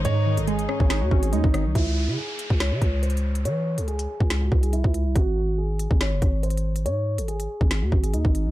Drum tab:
HH |x--------x--x--x-----------------x--x-----x-----|x-----------------x-----------x-----x-x-x----x--|x--------x--x--x-----------------x--x-----x-----|x-----------------x-----------x-----x-x-x----x--|
SD |------------------r-----o-----------------r-----|------------------------o-----------------------|------------------------o-----------------------|------------------------o-----------------------|
BD |---------------------o--------o--------o--------|o--------------------o--------o-----------------|---------------------o--------o--------o--------|o--------------------o--------o-----------------|

HH |x--------x--x--x-----------------x--x-----x-----|
SD |------------------------o-----------------------|
BD |---------------------o--------o--------o--------|